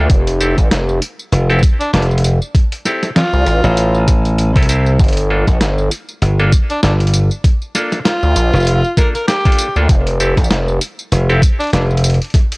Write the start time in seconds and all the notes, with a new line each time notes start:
0.10 F1, kick, closed hi-hat, tambourine
0.27 closed hi-hat, tambourine
0.40 C4 E4 G4 A4, tambourine
0.58 A1, kick, closed hi-hat, tambourine
0.71 F1, snare, closed hi-hat, tambourine
0.89 tambourine
1.02 closed hi-hat, tambourine
1.19 tambourine
1.32 F1, closed hi-hat, tambourine
1.50 C4 E4 G4 A4, tambourine
1.59 kick, tambourine
1.63 closed hi-hat, tambourine
1.80 D4, closed hi-hat, tambourine
1.93 F1 D4, snare, closed hi-hat, tambourine
2.02 closed hi-hat
2.11 tambourine
2.18 closed hi-hat
2.24 closed hi-hat, tambourine
2.42 tambourine
2.55 kick, closed hi-hat, tambourine
2.72 closed hi-hat, tambourine
2.85 C4 E4 G4 A4, snare, tambourine
3.03 snare, closed hi-hat, tambourine
3.16 F4, snare, closed hi-hat, tambourine
3.33 C2, tambourine
3.46 A1, closed hi-hat
3.64 A1, tambourine
3.77 closed hi-hat, tambourine
3.95 tambourine
4.08 kick, snare, closed hi-hat, tambourine
4.25 closed hi-hat, tambourine
4.38 closed hi-hat, tambourine
4.56 C2 C4 E4 G4 A4, kick, closed hi-hat, tambourine
4.62 closed hi-hat
4.69 C4 E4 G4 C5, closed hi-hat, tambourine
4.86 tambourine
4.99 G1, kick, closed hi-hat, tambourine
5.04 closed hi-hat
5.08 closed hi-hat
5.13 closed hi-hat
5.17 closed hi-hat, tambourine
5.30 A#3 D4 F4 A4
5.47 A#1, kick, snare, closed hi-hat, tambourine
5.61 G1, snare, closed hi-hat, tambourine
5.78 tambourine
5.91 closed hi-hat, tambourine
6.09 tambourine
6.22 G1, closed hi-hat, tambourine
6.39 A#3 D4 F4 A4, tambourine
6.52 kick, closed hi-hat, tambourine
6.70 D4, closed hi-hat, tambourine
6.83 G1 D4, snare, closed hi-hat, tambourine
7.00 closed hi-hat, tambourine
7.07 closed hi-hat
7.14 closed hi-hat, tambourine
7.31 tambourine
7.44 kick, closed hi-hat, tambourine
7.62 tambourine
7.75 A#3 D4 F4 A4, snare, tambourine
7.92 snare, closed hi-hat, tambourine
8.05 F4, snare, closed hi-hat, tambourine
8.23 D2, tambourine
8.36 A#1, closed hi-hat, tambourine
8.53 F1, tambourine
8.56 tambourine
8.60 tambourine
8.62 tambourine
8.65 closed hi-hat, tambourine
8.67 tambourine
8.84 tambourine
8.97 A#3 D4 F4 A4 A#4, kick, snare, closed hi-hat, tambourine
9.15 A#4, closed hi-hat, tambourine
9.28 G4, snare, closed hi-hat, tambourine
9.45 A#3 D4 F4 A4, kick, closed hi-hat, tambourine
9.52 closed hi-hat
9.58 closed hi-hat, tambourine
9.76 D2 A#3 D4 F4 A4, tambourine
9.89 F1, kick, closed hi-hat, tambourine
10.07 closed hi-hat, tambourine
10.20 C4 E4 G4 A4, tambourine
10.37 A1, kick, snare, closed hi-hat, tambourine
10.44 tambourine
10.50 F1, snare, closed hi-hat
10.68 tambourine
10.81 closed hi-hat, tambourine
10.99 tambourine
11.12 F1, closed hi-hat, tambourine
11.29 C4 E4 G4 A4, tambourine
11.42 kick, closed hi-hat, tambourine
11.60 D4, closed hi-hat, tambourine
11.64 closed hi-hat
11.67 closed hi-hat
11.70 F1 D4, snare, closed hi-hat
11.73 closed hi-hat, tambourine
11.82 closed hi-hat
11.87 closed hi-hat
11.91 tambourine
11.97 closed hi-hat
12.04 closed hi-hat, tambourine
12.10 closed hi-hat
12.14 closed hi-hat
12.22 closed hi-hat, tambourine
12.24 closed hi-hat
12.30 kick, closed hi-hat
12.35 snare, closed hi-hat, tambourine
12.52 closed hi-hat, tambourine